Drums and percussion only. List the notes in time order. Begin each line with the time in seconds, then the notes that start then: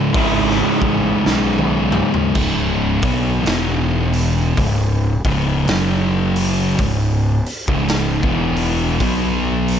0.14 kick, open hi-hat
0.50 snare
0.82 kick
1.26 snare
1.58 high tom
1.92 mid tom
2.14 floor tom
2.35 kick, crash
3.02 kick, open hi-hat
3.46 snare, open hi-hat
4.13 open hi-hat
4.57 kick, open hi-hat
5.25 kick, open hi-hat
5.68 snare, open hi-hat
6.36 open hi-hat
6.79 kick, open hi-hat
7.46 open hi-hat
7.68 kick
7.88 snare, open hi-hat
8.23 kick
8.56 open hi-hat
9.00 kick, open hi-hat
9.68 open hi-hat